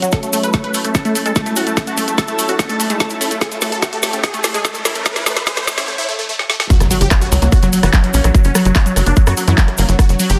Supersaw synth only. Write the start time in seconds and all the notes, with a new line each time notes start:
0.02 F#3
0.13 A4
0.23 A3
0.33 A3
0.44 B4
0.54 A3
0.64 B4
0.74 A3
0.85 A3
0.95 A4
1.05 A3
1.15 A3
1.26 A4
1.36 A3
1.46 A3
1.56 F#4
1.67 A3
1.77 A3
1.87 F#4
1.98 A3
2.08 A3
2.18 A4
2.28 A3
2.39 A3
2.49 F#4
2.59 A3
2.69 A4
2.80 A3
2.90 A3
3.00 A3
3.21 A3
3.31 A3
3.41 G#4
3.52 A3
3.62 A3
3.72 A4
3.83 A3
3.93 A4
4.03 A3
4.13 A3
4.24 G#4
4.34 A3
4.44 A3
4.54 G#4
4.65 A3
4.75 A3
4.85 E4
4.96 A3
5.06 A3
5.16 E4
5.26 A3
5.37 A3
5.47 G#4
5.57 A3
5.67 A3
5.78 E4
5.88 A3
5.98 E4
6.09 A3
6.19 A3
6.29 A3
6.50 A3
6.60 A3
6.70 F#4
6.80 F#3
6.91 F#3
7.01 G4
7.11 F#3
7.21 F#4
7.32 F#3
7.42 F#3
7.52 F#4
7.63 F#3
7.73 F#3
7.83 F#4
7.93 F#3
8.04 F#3
8.14 C#4
8.24 F#3
8.35 F#3
8.45 C#4
8.55 F#3
8.65 F#3
8.76 F#4
8.86 F#3
8.96 F#3
9.06 D4
9.17 F#3
9.27 F#4
9.37 F#3
9.48 F#3
9.58 F#3
9.78 F#3
9.89 F#3
9.99 F#4
10.09 F#3
10.20 F#3
10.30 G4